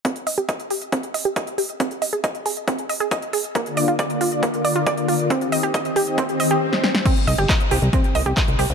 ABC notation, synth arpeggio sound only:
X:1
M:4/4
L:1/16
Q:1/4=137
K:Cm
V:1 name="Synth arpeggio sound"
C z e G e z G z C z e G e z G z | C z e A e z A z C z e A e z A z | B, z d F d z F z B, z d F d z F z | C z e G e z G z C z e G z4 |
C z e G e z G z C z e G e z G z |]